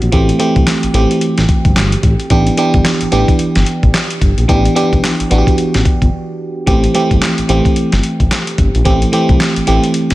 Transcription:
Already playing: E3 A3 C4 F#4 G4
0.02 A#1, closed hi-hat
0.12 A1 E3 A3 C4 G4, kick, closed hi-hat
0.29 closed hi-hat
0.39 E3 A3 C4 G4, closed hi-hat
0.56 C2, kick, closed hi-hat
0.67 snare, clap, closed hi-hat
0.83 A1, closed hi-hat
0.94 A1 E3 A3 C4 G4, closed hi-hat
1.11 closed hi-hat
1.21 closed hi-hat
1.38 A1, snare, closed hi-hat
1.49 kick, closed hi-hat
1.65 G1, kick, closed hi-hat
1.76 G1, snare, clap, closed hi-hat
1.92 closed hi-hat
2.03 A1, kick, closed hi-hat
2.20 closed hi-hat
2.30 A1 E3 B3 D4 G4, kick, closed hi-hat
2.47 closed hi-hat
2.57 E3 B3 D4 G4, closed hi-hat
2.74 G1, kick, closed hi-hat
2.85 snare, clap, closed hi-hat
3.01 A1, closed hi-hat
3.12 A1 E3 B3 D4 G4, closed hi-hat
3.28 kick, closed hi-hat
3.39 closed hi-hat
3.55 G1, snare, closed hi-hat
3.66 closed hi-hat
3.83 A1, kick, closed hi-hat
3.94 snare, clap, closed hi-hat
4.10 closed hi-hat
4.21 G1, kick, closed hi-hat
4.38 A#1, closed hi-hat
4.48 A1 E3 B3 D4 G4, kick, closed hi-hat
4.65 closed hi-hat
4.75 E3 B3 D4 G4, closed hi-hat
4.93 B1, kick, closed hi-hat
5.04 snare, clap, closed hi-hat
5.20 A1, closed hi-hat
5.30 A1 E3 B3 D4 F#4, closed hi-hat
5.38 G4
5.47 kick, closed hi-hat
5.58 closed hi-hat
5.74 A1, snare, closed hi-hat
5.85 kick, closed hi-hat
6.02 G1, kick, closed hi-hat
6.66 A1 E3 A3 C4 G4, kick, closed hi-hat
6.84 closed hi-hat
6.94 E3 A3 C4 G4, closed hi-hat
7.11 G1, kick, closed hi-hat
7.22 snare, clap, closed hi-hat
7.38 A1, closed hi-hat
7.49 A1 E3 A3 C4 G4, closed hi-hat
7.65 kick, closed hi-hat
7.76 closed hi-hat
7.92 G1, snare, closed hi-hat
8.03 closed hi-hat
8.20 A1, kick, closed hi-hat
8.31 snare, clap, closed hi-hat
8.47 closed hi-hat
8.58 G1, kick, closed hi-hat
8.75 A#1, closed hi-hat
8.85 A1 E3 A3 C4 G4, kick, closed hi-hat
9.02 closed hi-hat
9.12 E3 A3 C4 G4, closed hi-hat
9.29 C2, kick, closed hi-hat
9.40 snare, clap, closed hi-hat
9.56 A1, closed hi-hat
9.67 A1 E3 A3 C4 G4, closed hi-hat
9.84 closed hi-hat
9.94 closed hi-hat
10.10 snare, closed hi-hat

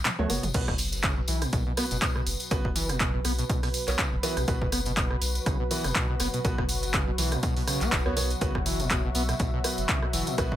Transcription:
0.05 B2, clap, closed hi-hat, mid tom, tambourine
0.19 D2 A3 B3 F#4 C#5, mid tom
0.30 F#1 B3 F#4 C#5, mid tom, open hi-hat, tambourine
0.43 F#1 E3, closed hi-hat, mid tom, tambourine
0.54 B1 B2 F#3 B3 F#4 B4, kick, closed hi-hat, tambourine, crash
0.68 F#1 B2, kick, cross-stick
0.78 open hi-hat, tambourine
0.92 closed hi-hat, tambourine
1.03 C#3, kick, cross-stick, clap, closed hi-hat
1.17 B2
1.28 B1 E3, open hi-hat, tambourine
1.42 B2, cross-stick, closed hi-hat, tambourine
1.53 B1 B2, kick, closed hi-hat, tambourine
1.67 B2
1.77 B3 F#4 B4, cross-stick, open hi-hat, tambourine
1.91 F#1 B2, closed hi-hat, tambourine
2.02 B2, kick, clap, closed hi-hat, tambourine
2.16 B2, cross-stick
2.27 F#1, open hi-hat, tambourine
2.40 closed hi-hat, tambourine
2.51 B1 C#3 B3 F#4 B4, kick, cross-stick, closed hi-hat
2.65 F#1 B2, kick
2.76 E3, open hi-hat, tambourine
2.89 B2, cross-stick, closed hi-hat, tambourine
3.00 B2, kick, clap, closed hi-hat, tambourine
3.14 B2
3.24 B1 B3, cross-stick, open hi-hat, tambourine
3.38 B2, closed hi-hat, tambourine
3.49 B2, kick, closed hi-hat, tambourine
3.63 B2, cross-stick, open hi-hat
3.74 open hi-hat, tambourine
3.88 B1 B3 F#4 C#5, clap, closed hi-hat, tambourine
3.99 C#3, kick, cross-stick, clap, closed hi-hat
4.12 F#1 B2
4.23 E3 B3 F#4 B4, open hi-hat, tambourine
4.37 B1 B2, cross-stick, closed hi-hat, tambourine
4.48 B1 B2 B3 F#4 B4, kick, closed hi-hat, tambourine
4.61 F#1 B2, kick
4.72 B3, cross-stick, open hi-hat, tambourine
4.85 B2, closed hi-hat, tambourine
4.97 B2, kick, clap, closed hi-hat, tambourine
5.10 B2, cross-stick
5.22 B1, open hi-hat, tambourine
5.35 closed hi-hat, tambourine
5.46 B1 C#3, kick, cross-stick, closed hi-hat, tambourine
5.60 B2
5.71 E3 B3 F#4 B4, open hi-hat, tambourine
5.84 F#1 B2, cross-stick, closed hi-hat, tambourine
5.95 B2, kick, clap, closed hi-hat
6.09 B2
6.20 F#1 B3, cross-stick, open hi-hat, tambourine
6.34 B2, closed hi-hat, tambourine
6.44 B1 B2 B3 F#4 B4, kick, closed hi-hat, tambourine
6.58 F#1 B2, kick, cross-stick
6.69 open hi-hat, tambourine
6.83 closed hi-hat, tambourine
6.94 C#3, kick, cross-stick, clap, closed hi-hat
7.07 B2
7.18 B1 E3, open hi-hat, tambourine
7.32 B2, cross-stick, closed hi-hat, tambourine
7.43 B2, kick, closed hi-hat, tambourine
7.57 B2, open hi-hat
7.67 C#3, cross-stick, open hi-hat, tambourine
7.81 B1 B3, clap, closed hi-hat, tambourine
7.92 F#1 B2, kick, clap, closed hi-hat, tambourine
8.06 D2 B3 F#4 C#5, cross-stick
8.17 B1 B3 F#4 C#5, open hi-hat, tambourine
8.30 closed hi-hat, tambourine
8.41 B1 C#3 B3 F#4 B4 E5, kick, closed hi-hat, tambourine
8.55 F#1 B2, kick, cross-stick
8.66 E3, open hi-hat, tambourine
8.80 B2, closed hi-hat, tambourine
8.90 B2, kick, cross-stick, clap, closed hi-hat
9.04 B2
9.15 B1 B3, open hi-hat, tambourine
9.29 B2, cross-stick, closed hi-hat, tambourine
9.39 B1 B2, kick, closed hi-hat, tambourine
9.53 B2
9.64 B3 F#4 B4, cross-stick, open hi-hat, tambourine
9.78 F#1, closed hi-hat, tambourine
9.89 C#3, kick, clap, closed hi-hat, tambourine
10.03 B2, cross-stick
10.13 F#1 E3, open hi-hat, tambourine
10.27 B2, closed hi-hat, tambourine
10.38 B1 B2 B3 F#4 B4, kick, cross-stick, closed hi-hat, tambourine
10.52 F#1 B2, kick

